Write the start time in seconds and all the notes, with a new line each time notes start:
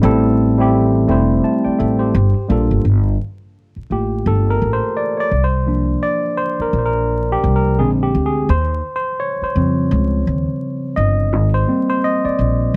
0.02 A1 G3 A3 C4 E4 A4
0.58 G3 A3 C4 E4 G4
1.07 E1 G3 A3 C4 E4 C5
1.44 E5 A5
1.65 D5 G5, muted upright bass stroke
1.79 A1 A4 E5
1.99 G4 C5
2.14 G1
2.48 A#1 G3 A#3 D4 F4 A4
2.71 G1
2.85 G1
3.76 muted upright bass stroke
3.90 A1 A3 A#3 F4 G4
4.26 G1 A4
4.50 A#4
4.62 A1
4.73 C5
4.97 D5
5.17 C#5 D5
5.31 C2
5.44 C5
5.67 F3 A#3 D4
6.03 D5
6.37 C5
6.59 A#4, muted upright bass stroke
6.73 A#1
6.79 C5
6.86 A#4
7.32 G4
7.44 C2
7.56 A#4
7.78 A#1 D3 G#3 C4 G#4
8.03 G4
8.15 D2
8.26 G#4
8.49 D#2 C5
8.96 C5
9.20 C#5
9.42 C5, muted upright bass stroke
9.55 F2 C#3 F3 G3 C4
9.91 C#2
10.27 D#2
10.96 G1 D#5
11.33 G#1
11.54 C5
11.67 G3 A#3 C4
11.89 C5
12.04 D#5
12.25 D5, muted upright bass stroke
12.39 A#1